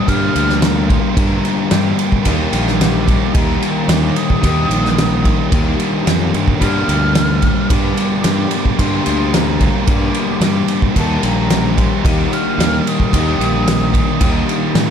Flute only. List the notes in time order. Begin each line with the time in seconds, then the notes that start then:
0.08 F6
0.63 A#5
0.89 C6
1.17 A#5
1.72 G5
2.81 D6
3.36 A#5
3.91 D6
4.16 D#6
6.62 F6
7.69 D6
8.79 C6
9.33 A#5
9.86 D6
10.42 D6
10.97 A5
11.23 A#5
11.78 C6
12.05 D6
12.33 F6
12.88 D#6